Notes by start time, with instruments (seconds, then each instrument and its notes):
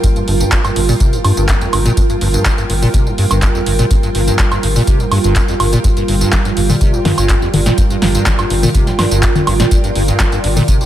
Already playing: analog synth pad G3 F4 A#4, ambient pad F4 A#4 G5
0.04 acid bass G2, kick, closed hi-hat, tambourine
0.16 acid bass G2, closed hi-hat, tambourine
0.28 sub bass G1, acid bass G2, open hi-hat
0.40 acid bass G2, closed hi-hat, tambourine
0.52 acid bass G1, kick, clap, closed hi-hat, tambourine
0.65 acid bass G2, closed hi-hat, tambourine, high woodblock
0.76 sub bass G1, acid bass G2, open hi-hat
0.89 acid bass A#2, tambourine
1.00 acid bass C3, kick, closed hi-hat, tambourine
1.13 acid bass G2, closed hi-hat, tambourine
1.24 acid bass G2, sub bass G2, open hi-hat, high woodblock
1.37 sub bass G1, acid bass G2, closed hi-hat, tambourine
1.49 acid bass F2, kick, clap, closed hi-hat, tambourine
1.61 acid bass F2, closed hi-hat, tambourine
1.73 sub bass G1, acid bass G2, open hi-hat, high woodblock
1.85 acid bass A#2, closed hi-hat, tambourine
1.97 acid bass G2, kick, closed hi-hat, tambourine
2.10 acid bass G2, closed hi-hat, tambourine
2.21 sub bass G1, acid bass G2, open hi-hat
2.34 acid bass G2, closed hi-hat, tambourine
2.45 kick, clap, closed hi-hat, tambourine
2.58 acid bass G2, closed hi-hat, tambourine
2.70 sub bass G1, acid bass G2, open hi-hat
2.82 acid bass A#2, tambourine
2.94 acid bass C3, kick, closed hi-hat, tambourine
3.06 acid bass G2, tambourine
3.18 acid bass G2, sub bass G2, open hi-hat
3.31 sub bass G1, acid bass G2, closed hi-hat, tambourine, high woodblock
3.42 acid bass F2, kick, clap, closed hi-hat, tambourine
3.55 acid bass F2, tambourine
3.66 sub bass G1, acid bass G2, open hi-hat
3.79 acid bass A#2, closed hi-hat, tambourine
3.91 acid bass G2, kick, closed hi-hat, tambourine
4.03 acid bass G2, closed hi-hat, tambourine
4.15 sub bass G1, acid bass G2, open hi-hat
4.27 acid bass G2, closed hi-hat, tambourine
4.39 acid bass G1, kick, clap, closed hi-hat, tambourine
4.52 acid bass G2, closed hi-hat, tambourine, high woodblock
4.63 sub bass G1, acid bass G2, open hi-hat
4.76 acid bass A#2, tambourine
4.87 acid bass C3, kick, closed hi-hat, tambourine
5.00 acid bass G2, closed hi-hat, tambourine
5.12 acid bass G2, sub bass G2, open hi-hat, high woodblock
5.24 sub bass G1, acid bass G2, closed hi-hat, tambourine
5.36 acid bass F2, kick, clap, closed hi-hat, tambourine
5.48 acid bass F2, closed hi-hat, tambourine
5.60 sub bass G1, acid bass G2, open hi-hat, high woodblock
5.73 acid bass A#2, closed hi-hat, tambourine
5.84 acid bass G2, analog synth pad D5, kick, closed hi-hat, tambourine
5.97 acid bass G2, closed hi-hat, tambourine
6.08 sub bass G1, acid bass G2, open hi-hat
6.21 acid bass G2, closed hi-hat, tambourine
6.32 acid bass G1, kick, snare, clap, closed hi-hat, tambourine
6.45 acid bass G2, closed hi-hat, tambourine
6.57 sub bass G1, acid bass G2, open hi-hat
6.69 acid bass A#2, tambourine, low conga
6.81 acid bass C3, kick, closed hi-hat, tambourine
6.94 acid bass G2, tambourine
7.05 sub bass G2, acid bass G2, snare, open hi-hat, low conga
7.18 sub bass G1, acid bass G2, closed hi-hat, tambourine, high woodblock
7.29 acid bass F2, kick, clap, closed hi-hat, tambourine
7.42 acid bass F2, tambourine
7.54 sub bass G1, acid bass G2, open hi-hat, low conga
7.66 acid bass A#2, snare, closed hi-hat, tambourine
7.78 acid bass G2, kick, closed hi-hat, tambourine
7.90 acid bass G2, closed hi-hat, tambourine
8.02 sub bass G1, acid bass G2, snare, open hi-hat
8.15 acid bass G2, closed hi-hat, tambourine
8.26 kick, snare, clap, closed hi-hat, tambourine
8.39 acid bass G2, closed hi-hat, tambourine, high woodblock
8.50 sub bass G1, acid bass G2, open hi-hat
8.63 acid bass A#2, tambourine, low conga
8.75 acid bass C3, kick, closed hi-hat, tambourine
8.87 acid bass G2, snare, closed hi-hat, tambourine
8.99 sub bass G2, acid bass G2, snare, open hi-hat, high woodblock
9.11 sub bass G1, acid bass G2, closed hi-hat, tambourine
9.23 acid bass F2, kick, clap, closed hi-hat, tambourine
9.36 acid bass F2, closed hi-hat, tambourine, low conga
9.47 sub bass G1, acid bass G2, open hi-hat, high woodblock
9.60 acid bass A#2, snare, closed hi-hat, tambourine
9.71 acid bass G2, kick, closed hi-hat, tambourine
9.84 acid bass G2, closed hi-hat, tambourine
9.95 sub bass G1, acid bass G2, open hi-hat
10.08 acid bass G2, closed hi-hat, tambourine
10.20 acid bass G1, kick, snare, clap, closed hi-hat, tambourine
10.32 acid bass G2, closed hi-hat, tambourine
10.44 sub bass G1, acid bass G2, open hi-hat
10.56 acid bass A#2, tambourine, low conga
10.68 acid bass C3, kick, closed hi-hat, tambourine
10.81 acid bass G2, tambourine